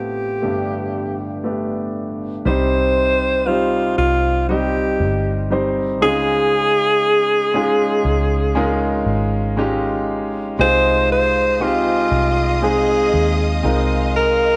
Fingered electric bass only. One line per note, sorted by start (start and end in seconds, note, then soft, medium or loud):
2.46 3.94 C2 medium
3.98 5.01 C2 medium
5.00 6.02 G1 loud
6.02 8.01 C#2 loud
8.05 9.03 C#2 loud
9.06 10.55 G#1 loud
10.59 12.08 C2 loud
12.12 13.09 C2 loud
13.14 13.61 D#2 loud
13.64 14.56 C2 loud